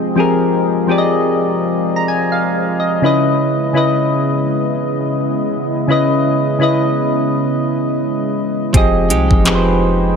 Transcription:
Already playing: F3 G#3 C4 G4 G#4 D#5 G5
0.15 F3 C4 F4 G4 G#4
0.20 A#4
0.87 F3 C4 G4 G#4
0.91 D5
0.98 D#5
1.96 A#5
2.08 G#5
2.32 F5
2.80 D#5
3.02 C#3 G#3 B3 C#4 E4 B4
3.06 D#5
3.73 C#3 C#4 E4 B4
3.77 D#5
5.87 C#3 C#4 E4 B4
5.92 D#5
6.59 C#3 C#4 E4 B4
6.63 D#5
8.73 F1 F3 G#3 C4 G4 G#4 G5, kick, closed hi-hat
8.77 D#5
9.10 C2 G#3 D#4 G4, closed hi-hat
9.31 F1, kick
9.44 F1 F3 C4 G4 G#4, clap, closed hi-hat
9.49 B4
9.55 C5

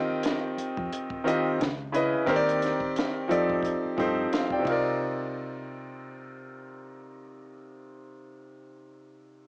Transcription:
Already playing: D#3 C4 F4 G4 D#5
0.10 muted fretless electric bass stroke
0.23 snare, closed hi-hat
0.57 muted fretless electric bass stroke, closed hi-hat
0.77 F2, kick
0.92 closed hi-hat
1.10 kick
1.24 D#3 C4 F4 G4 D#5, closed hi-hat
1.60 C#2, snare, closed hi-hat
1.92 C#3 C#4 E4 B4 D#5, closed hi-hat
2.26 D#2 D#3 C4 G4 A#4 C5, kick, closed hi-hat
2.36 D5
2.49 closed hi-hat
2.62 snare, closed hi-hat
2.80 muted fretless electric bass stroke, kick
2.96 snare, closed hi-hat
3.28 F2 F3 C4 D#4 G4 A4 D5, closed hi-hat
3.50 kick
3.63 kick, closed hi-hat
3.85 muted fretless electric bass stroke
3.97 G2 F3 C4 D#4 G4 A4 C5, kick, closed hi-hat
4.33 C5 F5, snare, closed hi-hat
4.50 D5 G5, kick
4.59 C3 C4
4.64 C2 D#4 F4, kick, ride
4.70 A#4 D5

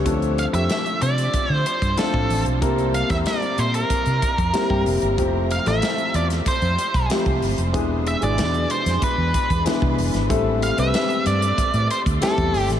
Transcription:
0.05 D2 F3 A3 C4 D4 A4, kick, closed hi-hat
0.22 closed hi-hat
0.38 F5, closed hi-hat
0.53 F2 F3 A3 C4 D4 G4 E5, closed hi-hat
0.70 snare, closed hi-hat
0.86 closed hi-hat
1.02 C3 D5, closed hi-hat
1.18 closed hi-hat
1.34 muted fingered electric bass stroke, kick, closed hi-hat
1.50 D3 C5
1.66 C5, closed hi-hat
1.82 G2, kick, closed hi-hat
1.97 F3 A3 C4 D4 F4 A4, snare, closed hi-hat
2.14 A2, kick
2.30 A1, open hi-hat
2.46 B1, closed hi-hat
2.61 C2 G3 A#3 C4 E4 A#4, kick, closed hi-hat
2.78 closed hi-hat
2.94 F5, closed hi-hat
3.09 E2 G3 A#3 C4 E4 A#4 E5, kick, snare, closed hi-hat
3.26 D5, snare, closed hi-hat
3.42 closed hi-hat
3.58 A#2 C5, closed hi-hat
3.74 A#4, closed hi-hat
3.90 muted fingered electric bass stroke, kick, closed hi-hat
4.06 C3, closed hi-hat
4.22 kick, closed hi-hat
4.38 F2, kick, closed hi-hat
4.53 G3 A#3 C4 E4 A#4 A#5, snare, closed hi-hat
4.70 G2 G5, kick
4.86 F1 E5, open hi-hat
5.02 G1, closed hi-hat
5.17 F1 F3 A3 C4 E4 G4, kick, closed hi-hat
5.51 F5, closed hi-hat
5.65 A1 A3 C4 E4 F4 A4 E5, snare, closed hi-hat
5.82 snare, closed hi-hat
5.98 closed hi-hat
6.14 E2 D5, closed hi-hat
6.30 snare, closed hi-hat
6.46 C5, muted fingered electric bass stroke, kick, closed hi-hat
6.62 F2, closed hi-hat
6.78 closed hi-hat
6.94 B1, kick, closed hi-hat
7.09 F3 A3 C4 E4 G4, snare, closed hi-hat
7.26 C2, kick, closed hi-hat
7.42 G1, open hi-hat
7.58 F1, closed hi-hat
7.73 E1 E3 G#3 B3 D4 G#4, kick, closed hi-hat
8.07 E5, closed hi-hat
8.21 G#1 B2 E3 G#3 D4 G#4 D5, closed hi-hat
8.38 E2, snare, closed hi-hat
8.54 closed hi-hat
8.70 C5, closed hi-hat
8.86 F2, snare, closed hi-hat
9.02 B4, muted fingered electric bass stroke, kick, closed hi-hat
9.18 E2
9.34 kick, closed hi-hat
9.50 E2, kick, closed hi-hat
9.65 E3 G#3 B3 D4 E4, snare, closed hi-hat
9.82 C2, kick
9.98 F1, open hi-hat
10.14 G#1, snare, closed hi-hat
10.29 A1 G3 A3 C4 E4 A4, kick, closed hi-hat
10.62 F5, closed hi-hat
10.77 C2 G3 A3 C4 E4 B4 E5, closed hi-hat
10.94 snare, closed hi-hat
11.10 closed hi-hat
11.26 G2 D5, closed hi-hat
11.42 closed hi-hat
11.58 muted fingered electric bass stroke, kick, closed hi-hat
11.74 A2, closed hi-hat
11.91 C5, closed hi-hat
12.06 D2, kick, closed hi-hat
12.21 G3 A3 C4 E4 A4, snare, closed hi-hat
12.38 E2, kick, closed hi-hat
12.54 G1, open hi-hat
12.70 A1, snare, closed hi-hat

